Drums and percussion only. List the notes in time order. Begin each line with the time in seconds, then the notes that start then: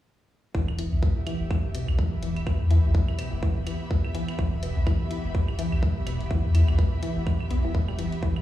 0.55 kick
0.68 claves
0.79 closed hi-hat
1.03 kick, closed hi-hat
1.27 closed hi-hat, claves
1.51 kick, claves
1.75 closed hi-hat
1.88 claves
1.99 kick
2.23 closed hi-hat
2.36 closed hi-hat, claves
2.47 kick, claves
2.71 closed hi-hat
2.95 kick, closed hi-hat
3.08 claves
3.19 closed hi-hat, claves
3.43 kick
3.67 closed hi-hat, claves
3.91 kick
4.05 claves
4.15 closed hi-hat
4.28 closed hi-hat, claves
4.39 kick
4.63 closed hi-hat
4.87 kick, closed hi-hat, claves
5.11 closed hi-hat
5.35 kick
5.48 claves
5.59 closed hi-hat
5.72 claves
5.83 kick
6.07 closed hi-hat, claves
6.21 closed hi-hat
6.31 kick
6.55 closed hi-hat, claves
6.68 claves
6.79 kick, closed hi-hat
7.03 closed hi-hat
7.27 kick, claves
7.40 claves
7.51 closed hi-hat
7.75 kick
7.88 claves
7.99 closed hi-hat
8.12 closed hi-hat
8.23 kick
8.36 claves